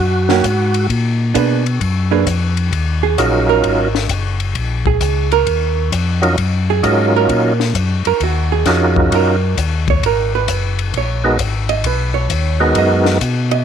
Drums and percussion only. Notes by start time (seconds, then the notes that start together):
0.29 snare
0.44 kick, hi-hat pedal, ride
0.74 ride
0.90 kick, ride
1.35 kick, hi-hat pedal, ride
1.66 ride
1.81 kick, ride
2.27 kick, hi-hat pedal, ride
2.57 ride
2.72 kick, ride
3.18 kick, hi-hat pedal, ride
3.64 kick, ride
3.95 snare
4.09 kick, hi-hat pedal, ride
4.40 ride
4.55 kick, ride
4.86 kick
5.01 kick, hi-hat pedal, ride
5.32 ride
5.47 kick, ride
5.92 kick, hi-hat pedal, ride
6.23 ride
6.38 kick, ride
6.84 kick, hi-hat pedal, ride
7.29 kick, ride
7.60 snare
7.75 kick, hi-hat pedal, ride
8.05 ride
8.20 kick, ride
8.66 kick, snare, hi-hat pedal, ride
8.96 kick
9.12 kick, ride
9.57 kick, hi-hat pedal, ride
9.88 kick, ride
10.03 kick, ride
10.48 kick, hi-hat pedal, ride
10.79 ride
10.94 kick, ride
11.39 kick, hi-hat pedal, ride
11.69 ride
11.84 kick, ride
12.30 kick, hi-hat pedal, ride
12.75 kick, ride
13.06 snare
13.21 kick, hi-hat pedal, ride
13.51 ride